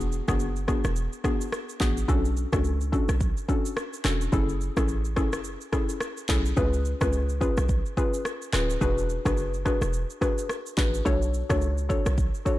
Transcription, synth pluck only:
0.00 0.24 B3 loud
0.00 0.24 D4 medium
0.00 0.25 F#4 medium
0.00 0.25 G#4 loud
0.28 0.45 B3 medium
0.28 0.45 D4 medium
0.28 0.45 F#4 medium
0.28 0.45 G#4 medium
0.68 0.88 B3 medium
0.68 0.88 D4 medium
0.68 0.88 F#4 medium
0.68 0.88 G#4 medium
1.24 1.44 B3 medium
1.24 1.44 D4 medium
1.24 1.44 F#4 medium
1.24 1.44 G#4 medium
1.80 2.00 B3 medium
1.80 2.00 D4 medium
1.80 2.00 F#4 medium
1.80 2.01 G#4 medium
2.08 2.49 C#4 medium
2.08 2.49 D4 medium
2.08 2.49 F#4 medium
2.08 2.49 A4 loud
2.53 2.69 C#4 medium
2.53 2.70 D4 medium
2.53 2.70 F#4 medium
2.53 2.70 A4 medium
2.92 3.12 C#4 medium
2.92 3.12 D4 medium
2.92 3.13 F#4 medium
2.92 3.13 A4 medium
3.48 3.68 C#4 medium
3.48 3.69 D4 medium
3.48 3.69 F#4 medium
3.48 3.69 A4 medium
4.04 4.24 C#4 medium
4.04 4.24 D4 medium
4.04 4.25 F#4 medium
4.04 4.25 A4 medium
4.32 4.73 C#4 medium
4.32 4.73 E4 medium
4.32 4.73 G#4 medium
4.32 4.73 A4 loud
4.77 4.94 C#4 medium
4.77 4.94 E4 medium
4.77 4.94 G#4 medium
4.77 4.94 A4 medium
5.16 5.36 C#4 medium
5.16 5.37 E4 medium
5.16 5.37 G#4 medium
5.16 5.37 A4 medium
5.72 5.93 C#4 medium
5.72 5.93 E4 medium
5.72 5.93 G#4 medium
5.72 5.93 A4 medium
6.29 6.49 C#4 medium
6.29 6.49 E4 medium
6.29 6.49 G#4 medium
6.29 6.49 A4 medium
6.57 6.97 C#4 loud
6.57 6.97 F4 medium
6.57 6.97 G#4 medium
6.57 6.98 B4 loud
7.01 7.18 C#4 medium
7.01 7.18 F4 medium
7.01 7.18 G#4 medium
7.01 7.18 B4 medium
7.41 7.61 C#4 medium
7.41 7.61 F4 medium
7.41 7.61 G#4 medium
7.41 7.61 B4 medium
7.97 8.17 C#4 medium
7.97 8.17 F4 medium
7.97 8.17 G#4 medium
7.97 8.17 B4 medium
8.53 8.73 C#4 medium
8.53 8.73 F4 medium
8.53 8.73 G#4 medium
8.53 8.73 B4 medium
8.81 9.22 D4 loud
8.81 9.22 F#4 medium
8.81 9.22 G#4 medium
8.81 9.22 B4 loud
9.25 9.42 D4 medium
9.25 9.42 F#4 medium
9.25 9.42 G#4 medium
9.25 9.43 B4 medium
9.65 9.85 D4 medium
9.65 9.85 F#4 medium
9.65 9.86 G#4 medium
9.65 9.86 B4 medium
10.21 10.41 D4 medium
10.21 10.41 F#4 medium
10.21 10.41 G#4 medium
10.21 10.42 B4 medium
10.77 10.97 D4 medium
10.77 10.97 F#4 medium
10.77 10.97 G#4 medium
10.77 10.98 B4 medium
11.05 11.46 D4 loud
11.05 11.46 F#4 medium
11.05 11.46 A4 medium
11.05 11.46 C#5 loud
11.49 11.67 D4 medium
11.49 11.67 F#4 medium
11.49 11.67 A4 medium
11.49 11.67 C#5 medium
11.89 12.09 D4 medium
11.89 12.09 F#4 medium
11.89 12.10 A4 medium
11.89 12.10 C#5 medium
12.45 12.59 D4 medium
12.45 12.59 F#4 medium
12.45 12.59 A4 medium
12.45 12.59 C#5 medium

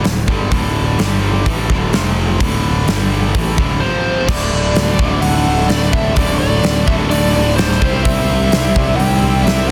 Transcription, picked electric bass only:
0.05 0.27 D1 medium
0.29 0.50 G1 medium
0.52 0.96 D1 medium
0.99 1.43 G1 medium
1.46 1.68 A1 medium
1.70 1.92 D1 medium
1.94 2.38 F1 medium
2.41 2.85 D1 medium
2.88 3.31 G1 medium
3.35 3.57 A1 medium
3.58 3.80 D1 medium
4.28 4.49 D1 loud
4.53 4.73 D1 medium
4.76 4.97 D1 medium
5.00 5.20 D1 medium
5.22 5.43 D1 medium
5.47 5.67 D1 loud
5.70 6.11 D1 loud
6.17 6.38 D1 medium
6.41 6.62 D1 medium
6.64 6.85 D1 medium
6.88 7.08 D1 loud
7.12 7.32 D1 medium
7.35 7.56 D1 loud
7.58 7.79 D1 loud
7.82 8.02 C2 medium
8.05 8.26 C2 loud
8.29 8.50 C2 medium
8.53 8.73 C2 medium
8.76 8.97 C2 medium
9.00 9.20 C2 medium
9.22 9.43 C2 loud
9.46 9.71 C2 loud

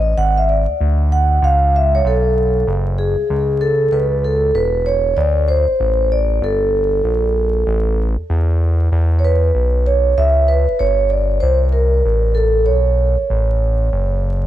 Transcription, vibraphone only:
0.00 0.18 D#5 loud
0.18 0.38 F#5 loud
0.38 0.49 E5 medium
0.49 0.78 D5 medium
1.12 1.44 F#5 loud
1.44 1.75 F5 loud
1.76 1.95 E5 medium
1.95 2.06 C#5 medium
2.07 2.64 A4 medium
2.98 3.63 G#4 medium
3.61 3.93 A4 medium
3.93 4.22 B4 medium
4.24 4.56 A4 medium
4.55 4.87 B4 medium
4.86 5.18 C#5 loud
5.17 5.49 D5 loud
5.48 6.13 C5 medium
6.12 6.44 D5 medium
6.44 7.95 A4 medium
9.19 9.24 C#5 medium
9.25 9.88 B4 medium
9.86 10.18 C#5 loud
10.18 10.50 E5 loud
10.48 10.81 B4 medium
10.79 11.09 C#5 loud
11.10 11.43 D5 loud
11.40 11.55 C5 medium
11.72 12.37 A#4 medium
12.35 12.64 A4 medium
12.66 14.19 C#5 medium

